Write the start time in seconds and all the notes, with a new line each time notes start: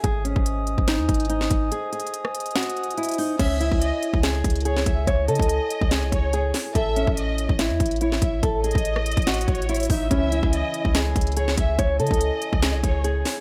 Already playing: G#5
0.04 G#1 G#4 C5 D#5 D#6, kick, closed hi-hat
0.25 C#4, closed hi-hat
0.36 G#1, kick
0.46 closed hi-hat
0.67 closed hi-hat
0.78 G#1, kick
0.88 D#4, snare, closed hi-hat
0.99 D#2
1.09 G#1, kick, closed hi-hat
1.14 closed hi-hat
1.20 closed hi-hat
1.25 closed hi-hat
1.29 D#4, closed hi-hat
1.41 snare
1.50 G#1, kick, closed hi-hat
1.72 G#4, closed hi-hat
1.92 G#4, closed hi-hat
2.00 closed hi-hat
2.07 closed hi-hat
2.14 closed hi-hat
2.25 cross-stick
2.35 closed hi-hat
2.40 closed hi-hat
2.46 closed hi-hat
2.51 closed hi-hat
2.56 F#4, snare, closed hi-hat
2.63 closed hi-hat
2.70 closed hi-hat
2.77 closed hi-hat
2.84 closed hi-hat
2.91 closed hi-hat
2.97 E4, closed hi-hat
3.03 closed hi-hat
3.09 closed hi-hat
3.11 closed hi-hat
3.14 closed hi-hat
3.18 D#4, open hi-hat
3.39 C#2 C#4 E4 C#5 E5 G#5, kick, closed hi-hat, crash
3.60 E4, closed hi-hat
3.72 C#2, kick
3.82 D#5, closed hi-hat
4.03 closed hi-hat
4.14 C#2, kick
4.23 G#4, snare, closed hi-hat
4.44 C#2, kick, closed hi-hat
4.50 closed hi-hat
4.56 closed hi-hat
4.60 closed hi-hat
4.65 G#4 C#5, closed hi-hat
4.77 snare
4.86 C#2 E5, kick, closed hi-hat
5.07 C#2 C#5, kick, closed hi-hat
5.28 C#3 A4 D#5, closed hi-hat
5.35 closed hi-hat
5.39 C#2, kick, closed hi-hat
5.49 closed hi-hat
5.70 closed hi-hat
5.81 C#2, kick
5.91 G#4, snare, closed hi-hat
6.02 C2
6.12 C#2 C#5, kick, closed hi-hat
6.33 G#4, closed hi-hat
6.54 snare, open hi-hat
6.75 A1 A4 C#5 E5, kick, closed hi-hat
6.96 C#4, closed hi-hat
7.07 A1, kick
7.17 D#5, closed hi-hat
7.38 closed hi-hat
7.49 A1, kick
7.59 E4, snare, closed hi-hat
7.70 E2
7.80 A1, kick, closed hi-hat
7.86 closed hi-hat
7.91 closed hi-hat
7.96 closed hi-hat
8.01 E4 C#5, closed hi-hat
8.12 snare
8.22 A1 E5, kick, closed hi-hat
8.43 A1 A4, kick, closed hi-hat
8.64 G#4 D#5, closed hi-hat
8.71 closed hi-hat
8.75 A1, kick, closed hi-hat
8.85 closed hi-hat
8.96 cross-stick
9.06 closed hi-hat
9.11 closed hi-hat
9.17 A1, kick, closed hi-hat
9.22 closed hi-hat
9.27 F#4, snare, closed hi-hat
9.34 closed hi-hat
9.41 closed hi-hat
9.48 A1 C#5, kick, closed hi-hat
9.55 closed hi-hat
9.62 closed hi-hat
9.69 E4, closed hi-hat
9.74 closed hi-hat
9.80 closed hi-hat
9.83 closed hi-hat
9.85 closed hi-hat
9.90 A1 D#4 E5, kick, open hi-hat
10.10 C#2 C#3 E3 C#4 E4 C#5 E5 G#5, kick, closed hi-hat
10.32 E4, closed hi-hat
10.43 C#2, kick
10.53 D#5, closed hi-hat
10.74 closed hi-hat
10.85 C#2, kick
10.95 G#4, snare, closed hi-hat
11.16 C#2, kick, closed hi-hat
11.21 closed hi-hat
11.27 closed hi-hat
11.32 closed hi-hat
11.37 G#4 C#5, closed hi-hat
11.48 snare
11.57 C#2 E5, kick, closed hi-hat
11.79 C#2 C#5, kick, closed hi-hat
12.00 C#3 A4 D#5, closed hi-hat
12.07 closed hi-hat
12.11 C#2, kick, closed hi-hat
12.21 closed hi-hat
12.42 closed hi-hat
12.53 C#2, kick
12.62 G#4, snare, closed hi-hat
12.74 C2
12.84 C#2 C#5, kick, closed hi-hat
13.04 G#4, closed hi-hat
13.25 snare, open hi-hat